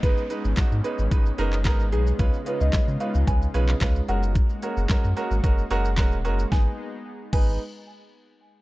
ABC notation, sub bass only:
X:1
M:4/4
L:1/16
Q:1/4=111
K:G#m
V:1 name="Sub bass" clef=bass
G,,, z2 G,,, G,, G,, z G,,, G,,,2 F,,,2 G,,,2 B,,,2 | C,, z2 C,, C, C, z C,, C,,2 B,,,2 C,,2 F,,,2- | F,,, z2 F,,, F,, F,, z G,,, F,,,2 F,,,2 D,,,2 F,,,2 | G,,, z4 z G,,,2 z8 |]